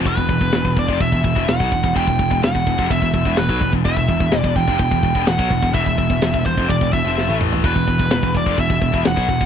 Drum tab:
RD |b---b---b---b---|b---b---b---b---|b---b---b---b---|b---b---b-------|
SD |----o-------o---|----o-------o---|----o-------o---|----o-------o---|
T2 |----------------|----------------|----------------|--------------o-|
FT |----------------|----------------|----------------|---------------o|
BD |oooo-ooooooo-ooo|oooo-ooooooo-ooo|oooo-ooooooo-ooo|oooo-oooooo-----|

RD |b---b---b---b---|
SD |----o-------o---|
T2 |----------------|
FT |----------------|
BD |oooo-ooooooo-ooo|